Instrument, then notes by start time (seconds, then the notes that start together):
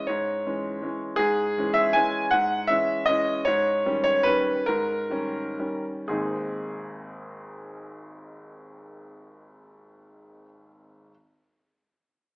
grand piano
0.07 G#2 C#5
0.46 E3 G#3 C#4
0.82 E3 G#3 C#4
1.16 G#2 G#4
1.58 E3 G#3 C#4
1.74 E5
1.93 E3 G#3 C#4 G#5
2.31 G#2 F#5
2.67 E3 G#3 C#4 E5
3.06 E3 G#3 C#4 D#5
3.45 G#2 C#5
3.86 D#3 G3 C#4
4.04 C#5
4.23 D#3 G3 C#4 B4
4.66 G#2 A#4
5.10 D#3 G3 C#4
5.59 D#3 G3 C#4
6.08 G#1 D#2 G#3 C4 D#4 G#4